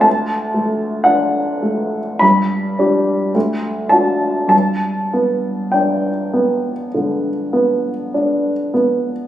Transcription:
<<
  \new Staff \with { instrumentName = "Upright piano" } { \time 4/4 \key g \major \tempo 4 = 51 a''4 fis''4 b''4. a''8 | a''4 g''2~ g''8 r8 | }
  \new Staff \with { instrumentName = "Upright piano" } { \time 4/4 \key g \major d,8 a8 d'8 a8 g,8 <d' g'>8 d,8 <d' fis'>8 | g,8 b8 d'8 b8 d8 b8 d'8 b8 | }
>>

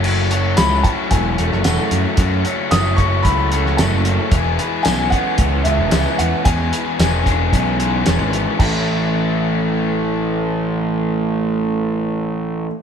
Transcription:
<<
  \new Staff \with { instrumentName = "Upright piano" } { \time 4/4 \key a \major \tempo 4 = 112 r4 b''8 a''8 gis''4 fis''4 | r4 dis'''8 cis'''8 b''4 a''4 | r4 gis''8 fis''4 e''8 e''8 fis''8 | gis''2. r4 |
a''1~ | a''1 | }
  \new Staff \with { instrumentName = "Overdriven electric guitar" } { \time 4/4 \key a \major fis8 cis''8 e'8 fis'8 e'8 a8 e'8 fis'8 | fis8 cis''8 e'8 fis'8 e'8 a8 e'8 fis'8 | e,8 b'8 cis'8 b8 cis'8 gis8 cis'8 b8 | e,8 b'8 cis'8 b8 cis'8 gis8 cis'8 b8 |
<a, e a cis' e'>1~ | <a, e a cis' e'>1 | }
  \new Staff \with { instrumentName = "Overdriven electric guitar" } { \time 4/4 \key a \major <fis, cis fis a cis' fis'>8 <fis a cis' fis'>8 <fis a cis' fis'>8 <fis a cis' fis'>4 <fis a cis' fis'>8 <fis, cis fis a cis' fis'>4 | <fis, cis fis a cis' fis'>8 <fis a cis' fis'>8 <fis a cis' fis'>8 <fis a cis' fis'>4 <fis a cis' fis'>8 <fis, cis fis a cis' fis'>4 | <e, b, e gis b gis'>8 <e gis b gis'>8 <e gis b gis'>8 <e gis b gis'>4 <e gis b gis'>8 <e, b, e gis b gis'>4 | <e, b, e gis b gis'>8 <e gis b gis'>8 <e gis b gis'>8 <e gis b gis'>4 <e gis b gis'>8 <e, b, e gis b gis'>4 |
<a, e a cis' e'>1~ | <a, e a cis' e'>1 | }
  \new Staff \with { instrumentName = "Picked electric bass" } { \clef bass \time 4/4 \key a \major fis,,4 cis,8 r8 e,,8 e,,16 fis,,16 e,,16 r16 fis,16 r16 | fis,8 r8 fis,,4 cis,4 fis,,16 fis,,8 r16 | e,,8 r8 b,,8 r8 cis,8 cis,16 e,,16 cis,16 r16 e,16 r16 | e,8 r8 e,,4 b,,4 e,,16 gis,,8 r16 |
a,,1~ | a,,1 | }
  \new DrumStaff \with { instrumentName = "Drums" } \drummode { \time 4/4 cymc8 hh8 <hh sn tamb>8 <hh bd>8 <hh bd>8 hh16 sn16 <hh sn tamb>8 <hh sn>8 | <hh bd>8 hh8 <hh sn tamb>8 <hh bd>8 <hh bd>8 hh16 sn16 <hh sn tamb>8 hh8 | <hh bd>8 hh8 <hh sn tamb>8 <hh bd>8 <hh bd>8 hh8 <hh sn tamb>8 <hh sn>8 | <hh bd>8 hh8 <hh sn tamb>8 <hh bd>8 <hh bd>8 hh8 <hh sn tamb>8 <hh sn>8 |
<cymc bd>4 r4 r4 r4 | r4 r4 r4 r4 | }
>>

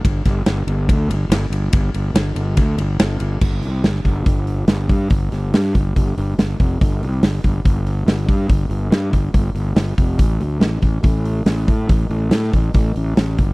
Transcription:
<<
  \new Staff \with { instrumentName = "Fingered electric bass" } { \clef bass \time 4/4 \key c \major \tempo 4 = 142 g,,8 g,,8 g,,8 g,,8 d,8 g,,8 g,,8 g,,8 | g,,8 g,,8 g,,8 g,,8 d,8 g,,8 g,,8 g,,8 | g,,8 c,8 g,,8 g,,8 g,,4 g,,8 g,8 | g,,8 g,,8 g,8 g,,8 g,,8 g,,8 g,,8 f,,8 |
g,,8 c,8 g,,8 g,,8 g,,4 g,,8 g,8 | g,,8 g,,8 g,8 g,,8 g,,8 g,,8 g,,8 f,,8 | a,,8 d,8 a,,8 a,,8 a,,4 a,,8 a,8 | a,,8 a,,8 a,8 a,,8 a,,8 a,,8 a,,8 g,,8 | }
  \new DrumStaff \with { instrumentName = "Drums" } \drummode { \time 4/4 <bd cymr>8 <bd cymr sn>8 <cymr sn>8 cymr8 <bd cymr>8 cymr8 <cymr sn>8 cymr8 | <bd cymr>8 cymr8 <cymr sn>8 cymr8 <bd cymr>8 cymr8 <cymr sn>8 cymr8 | <cymc bd>8 hho8 <hho sn>16 sn16 <hho bd>8 <hho bd>8 hho8 <hho sn>8 <hho bd>8 | <hho bd>8 <hho sn>8 <hho sn>16 sn16 <hho bd>8 <hho bd>8 hho8 <hho sn>8 <hho bd>8 |
<hho bd>8 hho8 <hho sn>8 <hho bd>8 <hho bd>8 hho8 <hho sn>8 <hho bd>8 | <hho bd>8 hho8 <hho sn>8 <hho bd>8 <hho bd>8 hho8 <hho sn>8 <hho bd>8 | <hho bd>8 hho8 <hho sn>8 <hho bd>8 <hho bd>8 hho8 <hho sn>8 <hho bd>8 | <hho bd>8 hho8 <hho sn>16 sn16 <hho bd>8 <hho bd>8 hho8 <hho sn>8 <hho bd>8 | }
>>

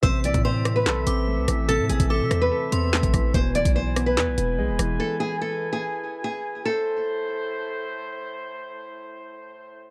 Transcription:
<<
  \new Staff \with { instrumentName = "Synth bell" } { \time 4/4 \key a \minor \tempo 4 = 145 e'''4 c'''4. d'''4. | e'''4 d'''4. c'''4. | r1 | r1 |
r1 | r1 | }
  \new Staff \with { instrumentName = "Nylon-string guitar" } { \time 4/4 \key a \minor c''8 d''8 c''8. b'2~ b'16 | a'8 gis'8 a'8. b'2~ b'16 | c''8 d''8 c''8. b'2~ b'16 | a'8 gis'8 a'8. gis'4~ gis'16 gis'4 |
a'2. r4 | r1 | }
  \new Staff \with { instrumentName = "Woodwind section" } { \time 4/4 \key a \minor <a c' a' e''>1~ | <a c' a' e''>1 | <e e' gis''>1~ | <e e' gis''>1 |
<a, a e' c''>1~ | <a, a e' c''>1 | }
  \new Staff \with { instrumentName = "Grand piano" } { \time 4/4 \key a \minor c8 e4 c'8 a'8 c'8 a8 e8 | c8 e4 c'8 a'8 c'8 a8 e8 | b,8 e4 b8 b'8 b8 gis8 e8~ | e2 r2 |
r1 | r1 | }
  \new Staff \with { instrumentName = "808-style bass" } { \clef bass \time 4/4 \key a \minor a,,8 b,,16 a,4~ a,16 b,,8 a,,8. c,16 a,,8~ | a,,16 a,16 a,,16 a,,8 c16 e,8 r8 e,8. a,,16 a,,8 | e,,8 d,,16 b,,4~ b,,16 e,16 b,,16 e,,8 b,,16 e,,16 e,,8 | r1 |
r1 | r1 | }
  \new DrumStaff \with { instrumentName = "Drums" } \drummode { \time 4/4 <hh bd>8 hh16 <hh bd>16 r8 <hh ss>8 <hc sn>8 hh8 r8 <hh ss>8 | hh8 hh16 <hh bd>16 r8 <hh ss>8 r8 hh8 <hc sn>16 <hh bd>16 <hh bd ss>8 | <hh bd>8 hh16 <hh bd>16 r8 <hh ss>8 <hc sn>8 hh8 r8 <hh ss>8 | r4 r4 r4 r4 |
r4 r4 r4 r4 | r4 r4 r4 r4 | }
>>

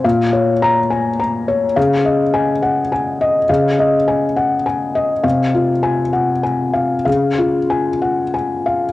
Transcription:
<<
  \new Staff \with { instrumentName = "Felt piano" } { \time 3/4 \key des \major \tempo 4 = 102 << { r4 bes''4 r4 | r4 aes''4 r4 | r2. | r4 aes''4 r4 |
r4 aes''4 r4 | } \\ { f''8 des''4 aes''8 bes''8 des''8 | f''8 ees''4 ges''8 aes''8 ees''8 | f''8 ees''8 aes''8 ges''8 aes''8 ees''8 | f''8 f'4 ges''8 aes''8 f''8 |
f''8 f'4 ges''8 aes''8 f''8 | } >> }
  \new Staff \with { instrumentName = "Felt piano" } { \clef bass \time 3/4 \key des \major bes,2. | des2. | des2. | c2. |
des2. | }
>>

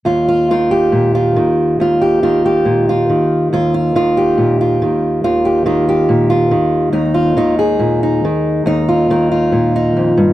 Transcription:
\new Staff \with { instrumentName = "Steel-string acoustic guitar" } { \time 4/4 \key ees \major \tempo 4 = 70 << { f'16 f'16 f'16 g'8 f'8. f'16 g'16 f'16 g'8 f'8. | f'16 f'16 f'16 g'8 f'8. f'16 g'16 f'16 g'8 f'8. | ees'16 f'16 ees'16 aes'8 ees'8. ees'16 f'16 ees'16 f'8 ees'8. | } \\ { ees,8 ees8 bes,8 ees8 ees,8 ees8 bes,8 ees8 | ees,8 ees8 bes,8 ees8 ees,8 ees8 bes,8 ees8 | ees,8 ees8 bes,8 ees8 ees,8 ees8 bes,8 f,16 g,16 | } >> }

